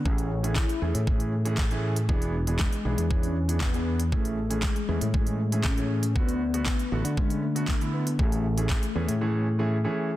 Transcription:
<<
  \new Staff \with { instrumentName = "Grand piano" } { \time 4/4 \key a \major \tempo 4 = 118 <e a cis' gis'>8 r16 <e a cis' gis'>8 r16 <e a cis' gis'>16 r16 <e a cis' gis'>8 r16 <e a cis' gis'>16 r16 <e a cis' gis'>8 r16 | <e b d' gis'>8 r16 <e b d' gis'>8 r16 <e b d' gis'>16 r16 <e b d' gis'>8 r16 <e b d' gis'>16 r16 <e b d' gis'>8 r16 | <e a cis' gis'>8 r16 <e a cis' gis'>8 r16 <e a cis' gis'>16 r16 <e a cis' gis'>8 r16 <e a cis' gis'>16 r16 <e a cis' gis'>8 r16 | <d a b fis'>8 r16 <d a b fis'>8 r16 <d a b fis'>16 r16 <d a b cis'>8 r16 <d a b fis'>16 r16 <d a b e'>8 r16 |
<e a cis' gis'>8 r16 <e a cis' gis'>8 r16 <e a cis' gis'>16 r16 <e a cis' gis'>8 r16 <e a cis' gis'>16 r16 <e a cis' gis'>8 r16 | }
  \new Staff \with { instrumentName = "Soft synth lead" } { \time 4/4 \key a \major cis'4 e'4. r4. | r4 gis4 cis'4 b4 | a4 gis2 cis'4 | b4 b4 gis8 a4 b8 |
a2.~ a8 r8 | }
  \new Staff \with { instrumentName = "Fingered electric bass" } { \clef bass \time 4/4 \key a \major a,,4. e,16 a,2~ a,16 | e,,4. b,,16 e,2~ e,16 | a,,4. e,16 a,2~ a,16 | d,4. a,,16 d2~ d16 |
a,,4. e,16 a,2 r16 | }
  \new DrumStaff \with { instrumentName = "Drums" } \drummode { \time 4/4 bd16 hh8 hh16 <hc bd sn>16 hh8 hh16 bd16 hh8 hh16 <hc bd sn>16 hh8 hh16 | bd16 hh8 hh16 <hc bd sn>16 hh8 hh16 bd16 hh8 hh16 <hc bd sn>16 hh8 hh16 | bd16 hh8 hh16 <hc bd sn>16 hh8 hh16 bd16 hh8 hh16 <hc bd sn>16 hh8 hh16 | bd16 hh8 hh16 <hc bd sn>16 hh8 hh16 bd16 hh8 hh16 <hc bd sn>16 hh8 hh16 |
bd16 hh8 hh16 <hc bd sn>16 hh8 hh16 r4 r4 | }
>>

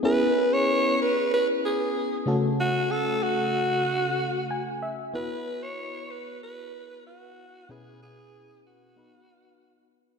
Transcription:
<<
  \new Staff \with { instrumentName = "Alto saxophone" } { \time 4/4 \key b \mixolydian \tempo 4 = 94 b'8. cis''8. b'8 b'8 gis'4 r8 | fis'8 a'8 fis'2~ fis'8 r8 | b'8. cis''8. b'8 b'4 fis'4 | gis'8 gis'4 fis'2 r8 | }
  \new Staff \with { instrumentName = "FM electric piano" } { \time 4/4 \key b \mixolydian << { r1 | r2. gis''8 e''8 | r1 | r1 | } \\ { <b cis' e' gis'>2.~ <b cis' e' gis'>8 <cis a cis' fis' a'>8~ | <cis a cis' fis' a'>2.~ <cis a cis' fis' a'>8 r8 | <b e' fis' b'>1 | <b, cis' e' gis' b'>2 <b dis' fis' b'>2 | } >> }
>>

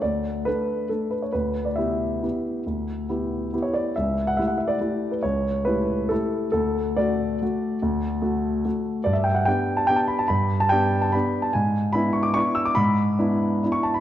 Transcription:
\new Staff \with { instrumentName = "Grand piano" } { \time 3/4 \key d \major \tempo 4 = 142 << { d''4 b'4 a'8 b'16 cis''16 | b'8. d''16 e''2~ | e''2~ e''16 cis''16 d''8 | e''8. fis''16 e''16 fis''16 e''16 d''4 b'16 |
cis''4 b'4 a'4 | a'4 d''2~ | d''2 r4 | d''16 e''16 g''16 fis''16 g''8. a''16 g''16 a''16 b''16 a''16 |
b''8. a''16 g''8. a''16 b''8. a''16 | gis''4 b''8 cis'''16 d'''16 cis'''8 e'''16 d'''16 | b''2~ b''16 cis'''16 a''16 b''16 | } \\ { d,4 <a d' a'>4 <a d'>4 | d,4 <b e' g'>4 <b e' g'>4 | d,4 <b e' g'>4 <b e' g'>4 | cis,4 <a e' g'>4 <a e' g'>4 |
cis,4 <a e' g'>4 <a e' g'>4 | d,4 <a fis'>4 <a fis'>4 | d,4 <a fis'>4 <a fis'>4 | g,4 <b d' g'>4 <b d' g'>4 |
g,4 <b d' g'>4 <b d' g'>4 | gis,4 <b d' e'>4 <b d' e'>4 | gis,4 <b d' e'>4 <b d' e'>4 | } >> }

